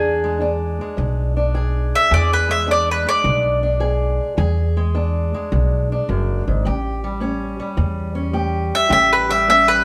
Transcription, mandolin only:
0, 0, Header, 1, 2, 480
1, 0, Start_track
1, 0, Tempo, 567108
1, 1783, Time_signature, 4, 2, 24, 8
1, 8329, End_track
2, 0, Start_track
2, 0, Title_t, "Mandolin"
2, 0, Program_c, 0, 25
2, 0, Note_on_c, 0, 68, 80
2, 1132, Note_off_c, 0, 68, 0
2, 1654, Note_on_c, 0, 76, 87
2, 1794, Note_off_c, 0, 76, 0
2, 1808, Note_on_c, 0, 74, 81
2, 1951, Note_off_c, 0, 74, 0
2, 1975, Note_on_c, 0, 71, 79
2, 2115, Note_off_c, 0, 71, 0
2, 2123, Note_on_c, 0, 76, 78
2, 2269, Note_off_c, 0, 76, 0
2, 2295, Note_on_c, 0, 74, 83
2, 2435, Note_off_c, 0, 74, 0
2, 2466, Note_on_c, 0, 71, 76
2, 2600, Note_off_c, 0, 71, 0
2, 2612, Note_on_c, 0, 74, 90
2, 4006, Note_off_c, 0, 74, 0
2, 7405, Note_on_c, 0, 76, 96
2, 7544, Note_off_c, 0, 76, 0
2, 7554, Note_on_c, 0, 76, 81
2, 7702, Note_off_c, 0, 76, 0
2, 7724, Note_on_c, 0, 71, 73
2, 7867, Note_off_c, 0, 71, 0
2, 7876, Note_on_c, 0, 76, 78
2, 8023, Note_off_c, 0, 76, 0
2, 8038, Note_on_c, 0, 76, 86
2, 8183, Note_off_c, 0, 76, 0
2, 8195, Note_on_c, 0, 71, 87
2, 8329, Note_off_c, 0, 71, 0
2, 8329, End_track
0, 0, End_of_file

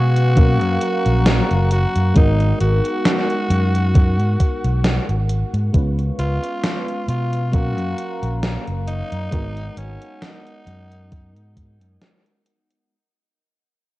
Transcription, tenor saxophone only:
0, 0, Header, 1, 2, 480
1, 0, Start_track
1, 0, Tempo, 895522
1, 1158, Time_signature, 4, 2, 24, 8
1, 7500, End_track
2, 0, Start_track
2, 0, Title_t, "Tenor saxophone"
2, 0, Program_c, 0, 66
2, 0, Note_on_c, 0, 66, 114
2, 897, Note_off_c, 0, 66, 0
2, 923, Note_on_c, 0, 66, 103
2, 1144, Note_off_c, 0, 66, 0
2, 1160, Note_on_c, 0, 63, 101
2, 1382, Note_off_c, 0, 63, 0
2, 1398, Note_on_c, 0, 66, 106
2, 2816, Note_off_c, 0, 66, 0
2, 3317, Note_on_c, 0, 65, 108
2, 3776, Note_off_c, 0, 65, 0
2, 3801, Note_on_c, 0, 65, 103
2, 4042, Note_on_c, 0, 66, 113
2, 4050, Note_off_c, 0, 65, 0
2, 4520, Note_off_c, 0, 66, 0
2, 4759, Note_on_c, 0, 63, 127
2, 5243, Note_on_c, 0, 61, 107
2, 5251, Note_off_c, 0, 63, 0
2, 5486, Note_on_c, 0, 63, 105
2, 5494, Note_off_c, 0, 61, 0
2, 6202, Note_off_c, 0, 63, 0
2, 7500, End_track
0, 0, End_of_file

